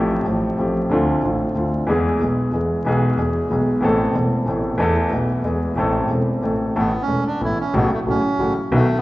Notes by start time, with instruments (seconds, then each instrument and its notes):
Already playing: grand piano A1 A2 F3 A3 C4 G4, double bass A1
0.25 grand piano A1 A2 F3 A3 C4, double bass A1
0.57 grand piano A1 A2 F3 A3 C4 G4, double bass A1
0.90 double bass D2, grand piano D2 D3 A3 C4
0.94 grand piano F4
1.22 grand piano A1 A2 D3 A3 C4 F4, double bass A1
1.55 double bass D2, grand piano D2 D3 A3 C4 F4
1.87 double bass E2, grand piano E2 E3 G#3 B3 G#4
2.19 double bass B1, grand piano B1 B2 E3 G#3 B3
2.24 grand piano G#4
2.51 grand piano E2 E3 G#3 B3, double bass E2
2.55 grand piano G#4
2.85 double bass B1, grand piano B1 B2 E3 G#3 B3 G#4
3.17 double bass E2, grand piano E2 E3 G#3 B3
3.21 grand piano G#4
3.49 grand piano B1 B2 E3 G#3 B3, double bass B1
3.53 grand piano G#4
3.81 grand piano A1 A2 E3 B3 C4 A4, double bass A1
4.13 grand piano E1 E2 E3 B3 C4, double bass E1
4.17 grand piano A4
4.46 double bass A1, grand piano A1 A2 E3 B3 C4 A4
4.78 grand piano E2 E3 A3 B3, double bass E2
4.82 grand piano A4
5.10 grand piano B1 B2 E3 A3 B3 A4, double bass B1
5.44 grand piano E2 E3 G#3 B3 G#4, double bass E2
5.76 double bass A1, grand piano A1 A2 E3 A3 C4
5.80 grand piano A4
6.08 double bass E1, grand piano E1 E2 E3 A3 C4 A4
6.41 grand piano A1 A2 E3 A3 C4 A4, double bass A1
6.76 grand piano A1 A2 E3 A3 B3 A4, double bass A1, bandoneon B3
7.02 bandoneon C#4
7.08 grand piano E1 E2 E3 A3 B3 A4, double bass E1
7.27 bandoneon D4
7.41 grand piano A1 A2 E3 A3 B3 A4, double bass A1, bandoneon E4
7.60 bandoneon C#4
7.74 grand piano A1 A2 C#3 F#3 A3 F#4, double bass A1, bandoneon B3
7.93 bandoneon A3
8.07 grand piano A1 A2 C#3 F#3 A3 F#4, double bass A1, bandoneon C#4
8.39 grand piano A1 A2 C#3 F#3 A3 F#4, double bass A1
8.72 grand piano B1 B2 D#3 F#3 B3 F#4, double bass B1, bandoneon A3
8.98 bandoneon B3